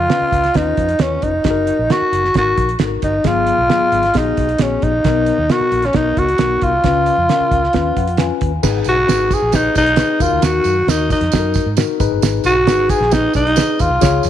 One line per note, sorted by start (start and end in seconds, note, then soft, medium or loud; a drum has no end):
0.00 0.28 C#3 medium
0.00 0.58 F4 loud
0.10 0.42 C#4 medium
0.10 0.42 F4 medium
0.10 0.42 B4 medium
0.10 snare loud
0.10 closed hi-hat medium
0.21 muted fingered electric bass stroke soft
0.32 0.49 C#2 medium
0.32 kick medium
0.32 closed hi-hat medium
0.44 snare soft
0.44 closed hi-hat soft
0.54 0.72 D#2 loud
0.54 0.87 C#4 medium
0.54 1.03 D#4 medium
0.54 0.87 F4 medium
0.54 0.87 B4 medium
0.54 kick medium
0.54 snare loud
0.54 closed hi-hat medium
0.77 0.94 F2 medium
0.77 kick medium
0.77 closed hi-hat medium
0.89 closed hi-hat medium
0.99 1.17 D#2 medium
0.99 1.32 C#4 medium
0.99 1.25 C#4 medium
0.99 1.32 F4 medium
0.99 1.32 B4 medium
0.99 snare loud
0.99 closed hi-hat loud
1.22 1.40 F1 medium
1.22 1.93 D#4 medium
1.22 kick medium
1.22 closed hi-hat medium
1.44 1.70 F#1 medium
1.44 1.77 D#4 medium
1.44 1.77 F#4 medium
1.44 1.50 G#4 medium
1.44 kick loud
1.44 snare loud
1.44 closed hi-hat medium
1.50 1.80 A#4 loud
1.67 closed hi-hat medium
1.79 1.87 A#1 medium
1.90 2.22 D#4 medium
1.90 2.22 F#4 medium
1.90 2.36 F#4 medium
1.90 2.22 A#4 medium
1.90 snare loud
1.90 closed hi-hat medium
2.01 muted fingered electric bass stroke soft
2.12 2.29 F#1 medium
2.12 closed hi-hat medium
2.25 snare soft
2.34 2.52 G#1 loud
2.34 2.68 D#4 medium
2.34 2.68 F#4 medium
2.34 2.74 F#4 medium
2.34 2.68 A#4 medium
2.34 kick medium
2.34 snare loud
2.34 closed hi-hat medium
2.57 2.74 A#1 medium
2.57 kick medium
2.57 closed hi-hat medium
2.69 closed hi-hat soft
2.79 2.97 G#1 medium
2.79 3.12 D#4 medium
2.79 3.12 F#4 medium
2.79 2.85 A4 medium
2.79 snare loud
2.79 closed hi-hat medium
2.85 3.15 A#4 medium
3.02 3.19 G1 medium
3.02 3.29 D#4 medium
3.02 kick medium
3.02 closed hi-hat medium
3.24 3.50 G#1 medium
3.24 3.88 G#2 medium
3.24 3.57 F#3 medium
3.24 3.57 B3 medium
3.24 4.19 F4 loud
3.24 3.57 G#4 medium
3.24 kick loud
3.24 snare medium
3.24 closed hi-hat loud
3.47 closed hi-hat medium
3.58 3.67 B1 medium
3.69 4.02 F#3 medium
3.69 4.02 B3 medium
3.69 4.02 G#4 medium
3.69 snare loud
3.69 closed hi-hat medium
3.81 muted fingered electric bass stroke soft
3.92 4.09 G#1 medium
3.92 closed hi-hat medium
4.03 snare soft
4.03 closed hi-hat soft
4.14 4.32 A#1 loud
4.14 4.47 B3 medium
4.14 4.64 D#4 medium
4.14 4.47 F#4 medium
4.14 4.47 G#4 medium
4.14 kick medium
4.14 snare loud
4.14 closed hi-hat medium
4.37 4.54 B1 medium
4.37 kick medium
4.37 closed hi-hat medium
4.49 closed hi-hat soft
4.59 4.76 A#1 medium
4.59 4.92 B3 medium
4.59 4.92 F#4 medium
4.59 4.92 G#4 medium
4.59 snare loud
4.59 closed hi-hat loud
4.63 4.85 C#4 medium
4.82 4.99 A#1 medium
4.82 5.53 D#4 medium
4.82 kick medium
4.82 closed hi-hat medium
5.04 5.30 B1 loud
5.04 5.69 B2 medium
5.04 5.37 B3 medium
5.04 5.37 D#4 medium
5.04 5.37 A#4 loud
5.04 kick loud
5.04 snare loud
5.04 closed hi-hat medium
5.26 closed hi-hat medium
5.38 5.47 D#2 medium
5.50 5.82 B3 medium
5.50 5.82 D#4 medium
5.50 5.87 F#4 medium
5.50 5.82 A#4 medium
5.50 snare loud
5.50 closed hi-hat medium
5.61 muted fingered electric bass stroke soft
5.72 5.89 A#1 medium
5.72 closed hi-hat medium
5.82 5.98 C#4 medium
5.82 snare soft
5.82 closed hi-hat soft
5.93 6.11 B1 loud
5.93 6.27 B3 medium
5.93 6.27 D#4 medium
5.93 6.20 D#4 medium
5.93 6.27 A#4 medium
5.93 kick medium
5.93 snare medium
5.93 closed hi-hat medium
6.17 6.34 C#2 medium
6.17 6.65 F#4 loud
6.17 kick medium
6.17 closed hi-hat medium
6.29 closed hi-hat soft
6.38 6.56 B1 medium
6.38 6.72 B3 medium
6.38 6.72 D#4 medium
6.38 6.72 A#4 medium
6.38 snare loud
6.38 closed hi-hat loud
6.61 6.79 C2 medium
6.61 8.42 F4 medium
6.61 kick medium
6.61 closed hi-hat medium
6.84 7.09 C#2 loud
6.84 7.48 C#3 medium
6.84 7.16 C#4 medium
6.84 7.16 F4 medium
6.84 7.17 B4 medium
6.84 kick loud
6.84 snare loud
6.84 closed hi-hat medium
7.06 closed hi-hat medium
7.18 7.26 F2 medium
7.29 7.61 C#4 medium
7.29 7.61 F4 medium
7.29 7.61 A#4 medium
7.29 snare medium
7.29 closed hi-hat medium
7.40 muted fingered electric bass stroke soft
7.51 7.68 C#2 medium
7.51 kick medium
7.51 closed hi-hat medium
7.64 snare soft
7.73 7.91 D#2 medium
7.73 8.06 C#4 medium
7.73 8.06 F4 medium
7.73 8.06 B4 medium
7.73 kick medium
7.73 snare loud
7.73 closed hi-hat medium
7.97 8.30 F2 medium
7.97 8.18 F#5 medium
7.97 kick medium
7.97 closed hi-hat medium
8.07 closed hi-hat soft
8.17 8.51 C#4 medium
8.17 8.51 F4 medium
8.17 8.51 B4 medium
8.17 8.61 G#5 medium
8.17 snare loud
8.17 closed hi-hat loud
8.41 8.58 D#2 medium
8.41 kick medium
8.41 closed hi-hat medium
8.63 8.80 G#1 loud
8.63 9.27 G#2 medium
8.63 8.95 D#4 loud
8.63 8.95 G#4 loud
8.63 8.95 B4 loud
8.63 kick loud
8.63 snare medium
8.63 crash medium
8.63 tambourine loud
8.84 9.03 B1 medium
8.84 closed hi-hat medium
8.84 tambourine soft
8.88 9.35 F#4 loud
9.08 9.34 G#1 medium
9.08 9.40 D#4 medium
9.08 9.40 G#4 medium
9.08 9.40 B4 medium
9.08 snare medium
9.08 closed hi-hat medium
9.08 tambourine medium
9.31 9.57 G#4 medium
9.31 kick medium
9.31 closed hi-hat medium
9.31 tambourine soft
9.42 9.67 A#1 medium
9.52 9.85 D#4 medium
9.52 9.77 D#4 medium
9.52 9.85 G#4 medium
9.52 9.85 B4 medium
9.52 kick medium
9.52 snare loud
9.52 closed hi-hat medium
9.52 tambourine medium
9.75 10.01 B1 medium
9.75 10.23 D#4 loud
9.75 kick medium
9.75 closed hi-hat medium
9.75 tambourine medium
9.86 closed hi-hat soft
9.96 10.19 D#4 medium
9.96 10.21 G#4 medium
9.96 10.21 B4 medium
9.96 snare loud
9.96 closed hi-hat loud
9.96 tambourine medium
10.20 10.29 D#2 loud
10.20 10.83 D#3 medium
10.20 10.74 D#4 medium
10.20 10.46 F4 medium
10.20 10.74 F#4 medium
10.20 10.74 A#4 medium
10.20 kick loud
10.20 closed hi-hat medium
10.20 tambourine medium
10.32 10.40 D2 medium
10.42 10.59 D#2 medium
10.42 10.91 F#4 loud
10.42 snare loud
10.42 closed hi-hat loud
10.42 tambourine loud
10.64 10.82 F#2 medium
10.64 closed hi-hat medium
10.64 tambourine soft
10.87 11.12 D#2 loud
10.87 11.20 D#4 medium
10.87 11.11 D#4 medium
10.87 11.20 F#4 medium
10.87 11.20 A#4 medium
10.87 snare loud
10.87 closed hi-hat medium
10.87 tambourine loud
11.10 11.74 D#4 medium
11.10 kick loud
11.10 closed hi-hat medium
11.10 tambourine soft
11.21 11.30 F2 medium
11.21 snare soft
11.21 closed hi-hat soft
11.32 11.58 F#2 loud
11.32 11.65 D#4 medium
11.32 11.65 F#4 medium
11.32 11.38 A4 medium
11.32 kick medium
11.32 snare loud
11.32 closed hi-hat medium
11.32 tambourine medium
11.39 11.68 A#4 medium
11.54 kick medium
11.54 closed hi-hat medium
11.54 tambourine medium
11.66 11.83 G#2 medium
11.77 11.99 D#4 medium
11.77 12.00 F#4 medium
11.77 12.00 A#4 medium
11.77 snare loud
11.77 closed hi-hat loud
11.77 tambourine medium
12.00 12.08 G#1 loud
12.00 12.63 G#2 medium
12.00 12.54 D#4 medium
12.00 12.54 G#4 medium
12.00 12.54 B4 loud
12.00 kick loud
12.00 closed hi-hat medium
12.00 tambourine medium
12.11 12.19 G1 medium
12.22 12.39 G#1 loud
12.22 snare loud
12.22 closed hi-hat loud
12.22 tambourine loud
12.44 12.67 B1 loud
12.44 12.86 F#4 medium
12.44 12.91 F#4 loud
12.44 closed hi-hat medium
12.44 tambourine medium
12.67 12.92 G#1 loud
12.67 12.99 D#4 medium
12.67 12.99 G#4 medium
12.67 12.99 B4 medium
12.67 snare loud
12.67 closed hi-hat medium
12.67 tambourine medium
12.89 13.15 G#4 loud
12.89 13.12 G#4 medium
12.89 kick medium
12.89 closed hi-hat medium
12.89 tambourine soft
13.00 13.26 A#1 loud
13.00 snare soft
13.11 13.44 D#4 medium
13.11 13.33 D#4 medium
13.11 13.35 D#4 medium
13.11 13.44 G#4 medium
13.11 13.44 B4 medium
13.11 kick medium
13.11 snare loud
13.11 closed hi-hat medium
13.11 tambourine medium
13.34 13.60 B1 medium
13.34 13.76 D#4 medium
13.34 13.82 D#4 loud
13.34 kick loud
13.34 closed hi-hat medium
13.34 tambourine medium
13.47 closed hi-hat medium
13.56 13.89 D#4 medium
13.56 13.89 G#4 medium
13.56 13.89 B4 medium
13.56 snare loud
13.56 closed hi-hat loud
13.56 tambourine medium
13.79 13.88 D#2 medium
13.79 14.24 F4 medium
13.79 14.25 F4 medium
13.79 kick loud
13.79 closed hi-hat medium
13.79 tambourine medium
13.90 13.99 C2 medium
14.01 14.19 C#2 loud
14.01 14.30 C#3 medium
14.01 14.30 F4 medium
14.01 14.30 G#4 medium
14.01 14.30 C#5 loud
14.01 kick loud
14.01 snare loud
14.01 closed hi-hat loud
14.01 tambourine loud
14.23 14.30 F2 medium
14.23 closed hi-hat medium
14.23 tambourine medium